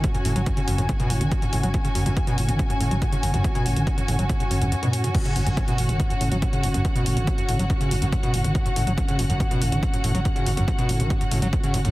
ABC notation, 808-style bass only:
X:1
M:4/4
L:1/16
Q:1/4=141
K:F#m
V:1 name="808-style bass" clef=bass
z2 F,,, F,,, z2 F,,, F,,, z2 F,,, F,,, z2 F,,, F,,, | z2 F,,, F,,, z2 F,,, F,,, z2 F,,, F,,, z2 F,,, F,,, | z2 F,,, F,,, z2 F,,, F,,, z2 F,,, F,,, z4 | z2 F,,, F,,, z2 F,,, F,,, z2 F,,, F,,, z2 F,,, F,,, |
z2 F,,, F,,, z2 F,,, F,,, z2 F,,, F,,, z2 F,,, F,,, | z2 F,,, F,,, z2 F,,, F,,, z2 F,,, F,,, z2 F,,, F,,, | z2 F,,, F,,, z2 F,,, F,,, z2 F,,, F,,, z2 F,,, F,,, |]